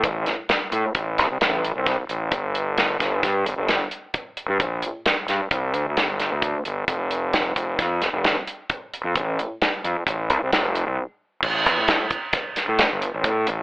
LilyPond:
<<
  \new Staff \with { instrumentName = "Fingered electric bass" } { \clef bass \time 5/4 \key a \phrygian \tempo 4 = 132 a,,8 r4 a,16 r16 a,,8 c,16 c,16 a,,8. c,8 r16 a,,8 | g,,4. g,,8 g,8 g,,16 g,,8 r4. g,16 | bes,,8 r4 g,16 r16 c,8 d,16 d,16 g,,8. d,8 r16 g,,8 | f,,4. f,,8 f,8 f,,16 f,,8 r4. f,16 |
a,,8 r4 f,16 r16 a,,8 c,16 c,16 f,,8. c,16 r4 | a,,8 e,16 a,8 r4. a,16 r16 g,,16 r16 a,,16 a,8 a,,16 r16 | }
  \new DrumStaff \with { instrumentName = "Drums" } \drummode { \time 5/4 <hh bd>8 <hh sn>8 <hh sn>8 hh8 <hh bd>8 <hh sn>8 <hh sn>8 hh8 <hh bd sn>8 hh8 | <hh bd>8 hh8 <hh sn>8 <hh bd sn>8 <hh bd sn>8 hh8 <hh sn>8 hh8 <hh bd>8 hh8 | <hh bd>8 hh8 <hh sn>8 <hh sn>8 <hh bd>8 hh8 <hh sn>8 <hh sn>8 <hh bd>8 hh8 | <hh bd>8 hh8 <hh sn>8 <hh bd>8 <hh bd sn>8 <hh sn>8 <hh sn>8 hh8 <hh bd>8 hh8 |
<hh bd>8 hh8 <hh sn>8 hh8 <hh bd>8 hh8 <hh sn>8 hh8 r4 | <cymc bd>8 hh8 <hh sn>8 <hh bd>8 <hh bd sn>8 <hh sn>8 <hh sn>8 hh8 <hh bd>8 hh8 | }
>>